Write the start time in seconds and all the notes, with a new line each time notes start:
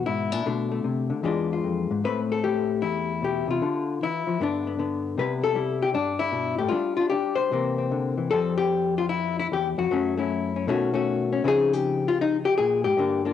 Already playing: B2 E3 G#3 B3
0.06 G#2 E4
0.32 A#2 D4
0.46 B2 D3 A3
0.72 A3
0.84 C3
1.10 D3
1.23 E2 E3 G#3 D4 F4
1.53 F4
1.64 F2
1.91 G#2
2.04 A2 A3 C4 B4
2.32 A4
2.44 A3 G4
2.82 E2 E4
3.22 B2 G4
3.48 C3 F4
3.62 D3
4.03 E3 E4
4.27 F3
4.40 G2 D3 B3 D4
4.67 B3
4.79 D3 B3
5.18 C3 G3 B3 E4 B4
5.44 A4
5.55 G3 E4
5.83 G4
5.94 G2 D4
6.19 E4
6.32 B2
6.59 A2 G4
6.69 G3 D4 F4
6.97 D4 F4
7.10 D4 G4
7.36 C5
7.52 C3 E3 A#3 C4
7.78 C4
7.92 D3
8.18 E3
8.31 F2 F3 G3 C4 A4
8.58 G4
8.98 F4
9.09 E4
9.40 E4
9.52 E2 G4
9.78 F2 F#4
9.91 F#2 F#3 A3 C#4
10.17 A3 C#4 E4
10.56 C#4
10.67 B2 D#3 A3 C#4 F#4
10.93 A3 C#4 F#4
11.33 C#4
11.44 C#3 F3 C4 D#4 G#4
11.73 G4
12.08 F4
12.21 D#4
12.45 G4
12.57 A#2 G#4
12.84 G#2 G4
12.97 G2 D3 A#3 D4
13.25 A#3 D4 F4